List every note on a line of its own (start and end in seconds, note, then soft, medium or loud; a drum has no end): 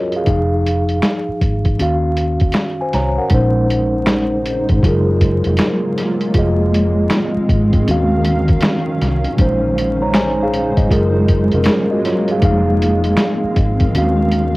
0.00 0.16 F#3 medium
0.00 0.29 C#4 medium
0.00 0.29 F4 medium
0.00 0.29 F#4 medium
0.00 0.17 G#4 medium
0.00 0.29 A#4 medium
0.00 0.13 C#5 medium
0.00 0.29 D#5 medium
0.12 closed hi-hat soft
0.16 0.27 G#4 medium
0.16 0.28 F5 medium
0.24 0.99 F1 loud
0.24 1.68 F3 medium
0.24 1.69 D#4 medium
0.24 1.70 G#4 medium
0.24 kick loud
0.24 closed hi-hat medium
0.29 1.70 F5 medium
0.67 closed hi-hat medium
0.89 closed hi-hat soft
1.02 finger snap medium
1.02 snare loud
1.02 closed hi-hat medium
1.29 muted fingered electric bass stroke soft
1.41 1.81 G#1 medium
1.41 kick medium
1.41 closed hi-hat medium
1.65 kick medium
1.65 closed hi-hat soft
1.78 2.51 D#2 loud
1.78 3.20 D#3 medium
1.78 3.21 C#4 medium
1.78 3.22 F#4 medium
1.78 closed hi-hat medium
1.82 2.57 F5 medium
2.17 closed hi-hat medium
2.40 kick medium
2.40 closed hi-hat soft
2.52 finger snap medium
2.52 snare medium
2.52 closed hi-hat medium
2.81 2.93 C5 soft
2.81 2.93 G#5 medium
2.93 3.17 C2 medium
2.93 3.18 C#5 medium
2.93 3.18 A#5 medium
2.93 snare soft
2.93 closed hi-hat medium
3.18 3.54 A#4 medium
3.18 3.54 F#5 medium
3.29 4.66 A#1 loud
3.29 4.72 A#2 medium
3.29 4.81 C#3 medium
3.29 4.73 G#3 medium
3.29 6.32 G#3 medium
3.29 4.73 C#4 medium
3.29 4.81 D#4 medium
3.29 4.74 D#4 medium
3.29 4.81 C5 medium
3.29 kick loud
3.29 closed hi-hat medium
3.34 4.75 C5 medium
3.70 closed hi-hat medium
4.06 finger snap medium
4.06 snare loud
4.06 closed hi-hat medium
4.46 closed hi-hat medium
4.69 4.82 G#1 medium
4.69 kick medium
4.69 closed hi-hat soft
4.83 5.42 F#1 loud
4.83 6.25 F#3 medium
4.83 6.33 F#3 loud
4.83 6.33 A#3 medium
4.83 6.33 F4 medium
4.83 6.26 F4 medium
4.83 6.26 G#4 medium
4.83 kick medium
4.83 closed hi-hat medium
4.87 6.27 A#4 medium
5.21 kick medium
5.21 closed hi-hat medium
5.44 5.58 F1 medium
5.44 closed hi-hat soft
5.57 finger snap loud
5.57 snare loud
5.57 closed hi-hat medium
5.98 snare soft
5.98 closed hi-hat medium
6.21 closed hi-hat soft
6.33 7.07 F1 medium
6.33 9.36 D#3 medium
6.33 7.76 F3 medium
6.33 7.85 G#3 medium
6.33 7.85 C4 medium
6.33 7.77 F4 medium
6.33 7.78 G#4 medium
6.33 9.36 F5 medium
6.33 kick loud
6.33 closed hi-hat medium
6.39 7.79 D#5 medium
6.74 closed hi-hat medium
7.10 finger snap medium
7.10 snare loud
7.10 closed hi-hat medium
7.37 muted fingered electric bass stroke soft
7.49 7.88 G#1 medium
7.49 kick loud
7.49 closed hi-hat medium
7.73 kick medium
7.73 closed hi-hat soft
7.86 8.59 D#2 loud
7.86 9.28 D#3 medium
7.86 9.37 F#3 medium
7.86 9.37 C#4 medium
7.86 9.29 C#4 medium
7.86 9.30 F#4 medium
7.86 closed hi-hat medium
7.91 9.31 F5 medium
8.25 closed hi-hat medium
8.48 kick medium
8.48 closed hi-hat soft
8.61 finger snap loud
8.61 snare loud
8.61 closed hi-hat medium
9.02 9.25 C2 medium
9.02 snare soft
9.02 closed hi-hat medium
9.24 closed hi-hat soft
9.36 10.74 A#1 loud
9.36 10.80 A#2 medium
9.36 10.89 C#3 medium
9.36 10.80 G#3 medium
9.36 13.90 G#3 medium
9.36 10.81 C#4 medium
9.36 10.89 D#4 medium
9.36 10.81 D#4 medium
9.36 10.89 C5 medium
9.36 kick loud
9.36 closed hi-hat medium
9.41 9.78 C5 medium
9.78 closed hi-hat medium
10.02 10.14 C#5 medium
10.02 10.14 A#5 medium
10.14 10.39 C5 medium
10.14 10.38 G#5 medium
10.14 finger snap medium
10.14 snare loud
10.14 closed hi-hat medium
10.43 10.78 G#4 medium
10.43 10.77 F5 medium
10.54 closed hi-hat medium
10.77 10.90 G#1 loud
10.77 11.14 D#5 medium
10.77 kick medium
10.77 closed hi-hat soft
10.88 11.50 F#1 loud
10.88 12.31 F#3 medium
10.88 12.41 F#3 loud
10.88 12.41 A#3 medium
10.88 11.28 F4 medium
10.88 12.41 F4 medium
10.88 11.29 G#4 medium
10.88 kick loud
10.88 closed hi-hat medium
10.93 11.29 A#4 medium
11.28 kick medium
11.28 closed hi-hat medium
11.52 11.66 F1 loud
11.52 11.90 A#4 medium
11.52 closed hi-hat soft
11.56 11.91 C#4 medium
11.64 finger snap medium
11.64 snare loud
11.64 closed hi-hat medium
11.91 12.04 F#4 medium
11.91 12.03 D#5 medium
12.05 12.29 F4 medium
12.05 12.29 C#5 medium
12.05 snare soft
12.05 closed hi-hat medium
12.28 12.44 F5 medium
12.28 closed hi-hat soft
12.32 12.42 G#4 medium
12.39 13.15 F1 loud
12.39 14.57 D#3 medium
12.39 13.83 F3 medium
12.39 13.93 C4 medium
12.39 13.84 D#4 medium
12.39 13.85 G#4 medium
12.39 14.57 F5 medium
12.39 kick loud
12.39 closed hi-hat medium
12.45 13.86 F5 medium
12.82 closed hi-hat medium
13.04 closed hi-hat soft
13.17 finger snap medium
13.17 snare loud
13.17 closed hi-hat medium
13.44 muted fingered electric bass stroke soft
13.56 13.96 G#1 medium
13.56 kick loud
13.56 closed hi-hat medium
13.80 kick medium
13.80 closed hi-hat soft
13.93 14.57 D#2 loud
13.93 14.57 D#3 medium
13.93 14.57 F#3 medium
13.93 14.57 C#4 medium
13.93 14.57 F#4 medium
13.93 closed hi-hat medium
13.98 14.57 F5 medium
14.32 closed hi-hat medium